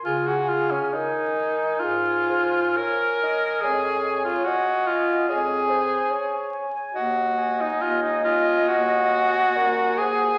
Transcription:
<<
  \new Staff \with { instrumentName = "Clarinet" } { \time 4/4 \key des \major \tempo 4 = 69 aes''16 aes''16 aes''16 aes''16 aes''16 aes''16 aes''16 aes''16 aes''16 aes''16 aes''16 aes''16 aes''16 aes''16 aes''16 aes''16 | aes''16 aes''16 aes''16 aes''16 aes''16 aes''16 aes''16 aes''16 aes''16 aes''16 aes''16 aes''16 aes''16 aes''16 aes''16 aes''16 | r8 aes''4 aes''4 aes''4 aes''8 | }
  \new Staff \with { instrumentName = "Alto saxophone" } { \time 4/4 \key des \major aes'4 bes'4 aes'8 c''8 des''8 ees''8 | des''4 ees''4 des''8 c''8 des''8 r8 | ees''2. bes'8 c''8 | }
  \new Staff \with { instrumentName = "Tenor saxophone" } { \time 4/4 \key des \major f'16 ges'16 f'16 des'16 ees'4 f'4 bes'4 | aes'8. f'16 ges'8 f'8 aes'4. r8 | ges'8. ees'16 f'16 ees'16 f'8 ges'4. aes'8 | }
  \new Staff \with { instrumentName = "Bass clarinet" } { \clef bass \time 4/4 \key des \major des4 r4 aes,4 r4 | f,4 r4 f,4 r4 | ees,4 ees,4 ees,4 ees,4 | }
>>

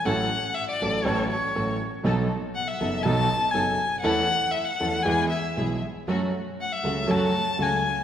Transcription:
<<
  \new Staff \with { instrumentName = "Violin" } { \time 4/4 \key fis \minor \tempo 4 = 119 fis''4 e''16 d''8. cis''8 cis''4 r8 | r4 fis''16 e''8. a''4 gis''4 | fis''4 e''16 fis''8. gis''8 e''4 r8 | r4 fis''16 e''8. a''4 gis''4 | }
  \new Staff \with { instrumentName = "String section" } { \time 4/4 \key fis \minor <a, cis' fis' a'>8 r4 <a, cis' fis' a'>8 <a, cis' fis' a'>8 r8 <a, cis' fis' a'>8 r8 | <b dis' a'>8 r4 <b dis' a'>8 <b dis' a'>8 r8 <b dis' a'>8 r8 | <e cis' e' a'>8 r4 <e cis' e' a'>8 <b e' gis'>8 r8 <b e' gis'>8 r8 | <a cis' fis'>8 r4 <a cis' fis'>8 <a cis' fis'>8 r8 <a cis' fis'>8 r8 | }
  \new Staff \with { instrumentName = "Grand piano" } { \time 4/4 \key fis \minor <a,, a, fis a cis' a'>8 r4 <a,, a, fis a cis' a'>8 <a,, a, fis a cis' a'>8 r8 <a,, a, fis a cis' a'>8 r8 | <b,, b, fis b dis' a'>8 r4 <fis,, fis, fis b dis' a'>8 <b,, b, fis b dis' a'>8 r8 <fis,, fis, fis b dis' a'>8 r8 | <e, e a cis' a'>8 r4 <e, e a cis' a'>8 <e, e gis b gis'>8 r8 <b,, b, e gis b gis'>8 r8 | <fis, fis a cis' a'>8 r4 <cis, cis fis a cis' a'>8 <fis, fis a cis' a'>8 r8 <cis, cis fis a cis' a'>8 r8 | }
>>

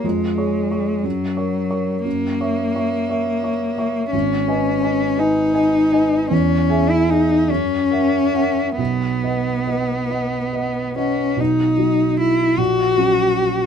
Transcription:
<<
  \new Staff \with { instrumentName = "Grand piano" } { \time 6/8 \key b \major \tempo 4. = 53 eis,8 <gis' cis'' cis'''>8 <gis' cis'' cis'''>8 fis,8 <ais' cis'' cis'''>8 <ais' cis'' cis'''>8 | fis,8 <cis'' e'' cis'''>8 <cis'' e'' cis'''>8 <cis'' e'' cis'''>8 <cis'' e'' cis'''>8 <cis'' e'' cis'''>8 | gis,,8 <b' dis'' gis''>8 <b' dis'' gis''>8 <b' dis'' gis''>8 <b' dis'' gis''>8 <b' dis'' gis''>8 | e,8 <gis' e'' gis''>8 <gis' e'' gis''>8 fis,8 <ais' e'' fis''>8 <ais' e'' fis''>8 |
b,,8 <b' dis'' fis''>8 <b' dis'' fis''>8 <b' dis'' fis''>8 <b' dis'' fis''>8 <b' dis'' fis''>8 | b,,8 <fis dis' fis'>4 ais,,8 <fis cis' fis'>4 | }
  \new Staff \with { instrumentName = "Cello" } { \time 6/8 \key b \major gis4. fis4. | ais2. | cis'4. dis'4. | cis'8. e'16 dis'8 cis'4. |
b2~ b8 cis'8 | dis'4 e'8 fis'4. | }
>>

